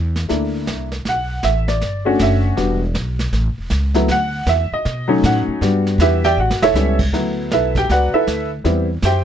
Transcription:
Already playing: E2
0.16 snare
0.28 D2 A3 A#3 D4 E4, brush sweep, snare
0.67 C2, snare, hi-hat pedal
0.92 snare
1.05 B1 F#5, brush sweep, snare
1.43 A1 E5, snare, hi-hat pedal
1.68 D5, snare
1.81 G1, brush sweep, snare
2.05 A3 C#4 D4 F#4
2.19 F#1 E5, snare, hi-hat pedal
2.56 E1 G3 B3 D4 F#4, brush sweep, snare
2.95 B1, snare, hi-hat pedal
3.19 snare
3.32 A1, brush sweep, snare
3.46 G1
3.58 E1
3.70 C#2, snare, hi-hat pedal
3.94 F#3 A3 B3 E4, snare
4.08 D2 F#5, brush sweep, snare
4.46 E2 E5, snare, hi-hat pedal
4.72 D#5, muted upright bass stroke
4.85 B2, brush sweep, snare
5.08 F#3 A3 C#4 D#4
5.23 A2 F#5, snare, hi-hat pedal
5.48 muted upright bass stroke
5.61 G2 G3 B3 D4 F#4, brush sweep, snare
5.87 snare
5.98 E2 E4 G4 B4 E5, snare, hi-hat pedal
6.24 G4 D5 E5 G5, snare
6.37 A1 F#4 F#5
6.51 snare
6.62 E1 E4 A4 C#5 E5, snare
6.74 C#2 G3 B3 C#4 E4, snare, hi-hat pedal
6.99 kick, crash
7.12 D2 F#3 A3 B3 E4, brush sweep, snare
7.51 B1 E4 A4 B4 E5, snare, hi-hat pedal
7.75 G4 G5, kick, snare
7.89 C#2 F#4 B4 D5 F#5, brush sweep, snare
8.14 E4 A4 B4 E5, muted upright bass stroke
8.27 D2, snare, hi-hat pedal
8.64 E2 G3 B3 C4 E4, brush sweep, snare
9.02 F#2 G4 C5 E5 G5, snare, hi-hat pedal

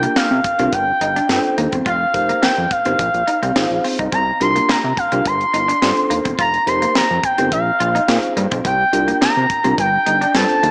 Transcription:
Already playing: D4 F4 G4 A#4 G5
0.03 A#3, closed hi-hat
0.16 C3 A#3 F5, snare, clap
0.31 C3
0.44 muted clean electric guitar stroke, kick, closed hi-hat
0.59 C2 C4 D4 F4 G4 A#4, closed hi-hat
0.73 G1 G5, muted clean electric guitar stroke, kick, closed hi-hat
1.01 G1 D#4, closed hi-hat
1.16 D4, closed hi-hat
1.29 G2 D4 F4 A4 B4, muted clean electric guitar stroke, snare, clap
1.36 C5
1.44 closed hi-hat
1.58 D#2 A#3, closed hi-hat
1.72 E1 C4, kick, closed hi-hat
1.86 F1 F4 F5, kick, closed hi-hat
2.14 F1 D#4 G4 A#4 C5, muted clean electric guitar stroke, kick, closed hi-hat
2.29 A#3, closed hi-hat
2.42 F2 A#3 G5, snare, clap
2.58 F2
2.71 F5, muted clean electric guitar stroke, kick, closed hi-hat
2.85 G1 C4 D#4 G4 A#4 C5, closed hi-hat
2.99 A#1, muted clean electric guitar stroke, kick, closed hi-hat
3.14 A#1, closed hi-hat
3.27 D#4, closed hi-hat
3.42 C2 C4, closed hi-hat
3.55 G#1 D#4 F4 G#4 C5, muted clean electric guitar stroke, snare, clap
3.71 A#1
3.84 C4, open hi-hat
3.99 C2 D#4, kick, closed hi-hat
4.12 C2 C4 A#5, kick, closed hi-hat
4.40 C2 D4 F4 G4 A#4 C6, muted clean electric guitar stroke, closed hi-hat
4.56 A#3, closed hi-hat
4.69 C3 A#3 A#5, snare, clap
4.84 C3
4.97 F5, muted clean electric guitar stroke, kick, closed hi-hat
5.12 C2 C4 D4 F4 G4 A#4, closed hi-hat
5.25 G1 C6, muted clean electric guitar stroke, kick, closed hi-hat
5.41 closed hi-hat
5.54 G1 D#4, closed hi-hat
5.68 D4, closed hi-hat
5.82 G2 D4 F4 A4 C5, muted clean electric guitar stroke, snare, clap
5.97 closed hi-hat
6.10 D#2 A#3, closed hi-hat
6.25 E1 C4, kick, closed hi-hat
6.39 F1 F4 A#5, kick, closed hi-hat
6.54 closed hi-hat
6.66 F1 D#4 G4 A#4 C5 C6, muted clean electric guitar stroke, closed hi-hat
6.82 A#3, closed hi-hat
6.95 F2 A#3 A#5, snare, clap
7.10 F2
7.23 G5, muted clean electric guitar stroke, kick, closed hi-hat
7.38 G1 C4 D#4 G4 A#4 C5, closed hi-hat
7.52 A#1 F5, muted clean electric guitar stroke, kick, closed hi-hat
7.80 A#1 F4, closed hi-hat
7.95 D#4, closed hi-hat
8.08 A#2 D#4 F4 G#4 C5, muted clean electric guitar stroke, snare, clap
8.23 closed hi-hat
8.37 G2 A#3, closed hi-hat
8.51 B1 C4, kick, closed hi-hat
8.65 C2 C4 G5, kick, closed hi-hat
8.93 C2 D4 F4 G4 A#4, muted clean electric guitar stroke, closed hi-hat
9.08 A#3, closed hi-hat
9.21 C3 A#3 A#5, snare, clap
9.37 C3
9.50 muted clean electric guitar stroke, kick, closed hi-hat
9.64 C2 C4 D4 F4 G4 A#4, closed hi-hat
9.78 G1 G5, muted clean electric guitar stroke, kick, closed hi-hat
10.06 G1 D#4, closed hi-hat
10.21 D4, closed hi-hat
10.34 G2 D4 F4 A4 C5 A5, muted clean electric guitar stroke, snare, clap
10.49 closed hi-hat
10.63 D#2 A#3, closed hi-hat

